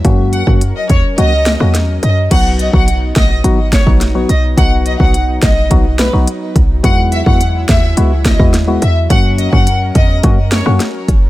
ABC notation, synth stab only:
X:1
M:4/4
L:1/16
Q:1/4=106
K:B
V:1 name="Synth stab"
[F,A,CF]3 [F,A,CF] z4 [F,A,CF] z2 [F,A,CF] z4 | [F,B,DF]3 [F,B,DF] z4 [F,B,DF] z2 [F,B,DF] z [F,B,DF] z2 | [F,B,DF]3 [F,B,DF] z4 [F,B,DF] z2 [F,B,DF] z4 | [G,B,EF]3 [G,B,EF] z4 [G,B,EF] z2 [G,B,EF] z [G,B,EF] z2 |
[F,A,CF]3 [F,A,CF] z4 [F,A,CF] z2 [F,A,CF] z4 |]